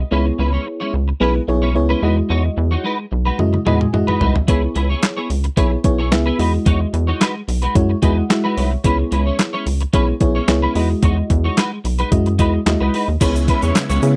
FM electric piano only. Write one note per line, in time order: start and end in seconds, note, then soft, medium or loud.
0.11 0.93 B3 medium
0.11 0.93 E4 medium
0.11 0.93 G#4 medium
0.11 0.93 C#5 medium
1.20 1.41 B3 medium
1.20 1.41 E4 medium
1.20 1.41 G#4 medium
1.20 1.42 B4 loud
1.48 1.69 B3 medium
1.48 1.69 E4 medium
1.48 1.69 G#4 medium
1.48 1.69 C#5 loud
1.75 2.02 B3 loud
1.75 2.01 E4 medium
1.75 2.03 G#4 medium
1.75 2.03 C#5 loud
2.02 2.90 G#3 medium
2.02 2.90 E4 medium
2.02 2.90 F#4 medium
2.02 2.90 D#5 medium
3.39 3.60 G#3 medium
3.39 3.60 E4 medium
3.39 3.60 F#4 medium
3.39 3.60 D#5 loud
3.66 3.87 G#3 loud
3.66 3.87 E4 medium
3.66 3.87 F#4 medium
3.66 3.87 D#5 loud
3.66 3.92 G#5 medium
3.93 4.35 G#3 medium
3.93 4.35 E4 medium
3.93 4.35 F#4 medium
3.93 4.35 D#5 loud
3.93 4.19 F#5 medium
4.21 4.46 E5 medium
4.48 5.29 B3 medium
4.48 5.29 E4 medium
4.48 5.29 G#4 medium
4.48 5.29 C#5 medium
5.57 5.78 B3 medium
5.57 5.78 E4 medium
5.57 5.78 G#4 medium
5.57 5.78 C#5 loud
5.84 6.05 B3 loud
5.84 6.05 E4 medium
5.84 6.05 G#4 medium
5.84 6.05 C#5 loud
6.11 6.39 B3 loud
6.11 6.38 E4 medium
6.11 6.39 G#4 medium
6.11 6.39 E5 loud
6.39 7.26 G#3 medium
6.39 7.27 E4 medium
6.39 7.27 F#4 medium
6.39 7.27 D#5 medium
7.75 7.96 G#3 medium
7.75 7.96 E4 medium
7.75 7.96 F#4 medium
7.75 7.96 C#5 loud
8.02 8.23 G#3 loud
8.02 8.23 E4 medium
8.02 8.23 F#4 medium
8.02 8.23 D#5 loud
8.02 8.16 G#5 medium
8.17 8.29 F#5 medium
8.29 8.71 G#3 medium
8.29 8.71 E4 medium
8.29 8.71 F#4 medium
8.29 8.71 E5 loud
8.29 8.55 F#5 medium
8.57 8.82 C#5 medium
8.84 9.65 B3 medium
8.84 9.66 E4 medium
8.84 9.66 G#4 medium
8.84 9.66 C#5 medium
9.93 10.14 B3 medium
9.93 10.14 E4 medium
9.93 10.14 G#4 medium
9.93 10.15 C#5 loud
10.20 10.41 B3 medium
10.20 10.42 E4 medium
10.20 10.42 G#4 medium
10.20 10.42 C#5 loud
10.48 10.75 B3 loud
10.48 10.74 E4 medium
10.48 10.75 G#4 medium
10.48 10.76 C#5 loud
10.75 11.63 G#3 medium
10.75 11.63 E4 medium
10.75 11.63 F#4 medium
10.75 11.63 D#5 medium
12.11 12.32 G#3 medium
12.11 12.32 E4 medium
12.11 12.32 F#4 medium
12.11 12.33 D#5 loud
12.39 12.60 G#3 loud
12.39 12.60 E4 medium
12.39 12.60 F#4 medium
12.39 12.60 D#5 loud
12.66 13.08 G#3 medium
12.66 13.08 E4 medium
12.66 13.08 F#4 medium
12.66 13.08 D#5 loud
13.21 13.82 B3 medium
13.21 13.82 E4 medium
13.21 13.82 G#4 medium
13.21 13.82 C#5 medium
14.02 14.16 B3 medium
14.02 14.16 E4 medium
14.02 14.16 G#4 medium
14.02 14.16 C#5 medium